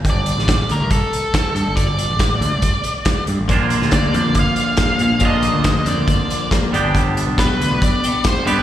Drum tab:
HH |x-x-x-x-x-x-x-x-|x-x-x-x-x-x-x-x-|x-x-x-x-x-x-x-x-|x-x-x-x-x-x-x-x-|
SD |---oo-------o---|----o-------o---|---oo-------o---|----o-------o---|
BD |o---o---o---o---|o---o---o---o---|o---o---o---o---|o---o---o---o---|

HH |x-x-x-x-x-x-x-x-|
SD |----o-------o---|
BD |o---o---o---o---|